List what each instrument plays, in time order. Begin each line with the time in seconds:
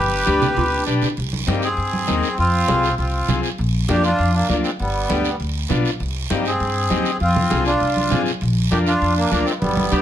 Already playing: upright bass G1, accordion G4 B4
0.26 upright bass D2, transistor combo organ D4 G4 B4, clarinet G4, high conga, short guiro
0.42 low conga, short guiro
0.57 upright bass D2, clarinet F4, low conga, long guiro
0.72 clarinet D4
0.87 upright bass B1, transistor combo organ D4 G4 B4, short guiro
1.02 low conga, short guiro
1.17 upright bass C2, high conga, long guiro
1.33 high conga
1.47 upright bass G2, accordion G3 A#3, transistor combo organ C4 D#4 G4, high conga, short guiro
1.62 accordion C4 G#4, short guiro
1.77 upright bass G2, high conga, long guiro
1.93 high conga
2.07 upright bass D#2, transistor combo organ C4 D#4 A#4, high conga, short guiro
2.23 short guiro
2.38 upright bass F2, accordion C4 F4, high conga, long guiro
2.68 upright bass C2, transistor combo organ C4 F4 G#4, high conga, short guiro
2.83 short guiro
2.98 upright bass C2, accordion C4 F4, high conga, long guiro
3.28 upright bass C2, transistor combo organ C4 F4 G#4, high conga, low conga, short guiro
3.43 short guiro
3.58 upright bass A#1, high conga, long guiro
3.89 upright bass F2, transistor combo organ A#3 D4 F4, accordion D4 G4, high conga, short guiro
4.04 accordion D4 F4, short guiro
4.19 upright bass F2, high conga, long guiro
4.33 accordion A#3 D4
4.48 upright bass D2, transistor combo organ A#3 D4 F4, accordion A#3 D4, high conga, short guiro
4.63 accordion G#3 C4, short guiro
4.79 upright bass G1, accordion G3 B3, high conga, long guiro
5.09 upright bass D2, transistor combo organ B3 D4 G4, high conga, short guiro
5.25 short guiro
5.40 upright bass D2, high conga, long guiro
5.69 upright bass B1, transistor combo organ B3 D4 F4, high conga, low conga, short guiro
5.85 short guiro
6.00 upright bass C2, high conga, long guiro
6.30 upright bass G2, accordion G3 A#3, transistor combo organ C4 D#4 G4, high conga, short guiro
6.45 accordion C4 G#4, short guiro
6.60 upright bass G2, high conga, long guiro
6.90 upright bass D#2, transistor combo organ C4 D#4 G4, high conga, short guiro
7.05 short guiro
7.20 upright bass F2, accordion C4 F4, high conga, long guiro
7.36 high conga, low conga
7.50 upright bass C2, transistor combo organ C4 F4 G#4, high conga, short guiro
7.65 accordion D4 F4, short guiro
7.80 upright bass C2, high conga, long guiro
7.97 high conga
8.10 upright bass G#2, transistor combo organ C4 F4 G#4, high conga, low conga, short guiro
8.26 short guiro
8.41 upright bass A#1, high conga, long guiro
8.71 upright bass F2, transistor combo organ D4 F4 A#4, accordion D4 G4, high conga, short guiro
8.86 accordion D4 F4, short guiro
9.01 upright bass F2, high conga, long guiro
9.15 accordion A#3 D4
9.30 upright bass D2, accordion A#3 D4, transistor combo organ D4 F4 A#4, high conga, short guiro
9.45 accordion G#3 C4, short guiro
9.59 upright bass G1, accordion G3 B3, high conga, long guiro
9.77 high conga
9.91 upright bass D2, transistor combo organ D4 G4 B4, clarinet G4, high conga, short guiro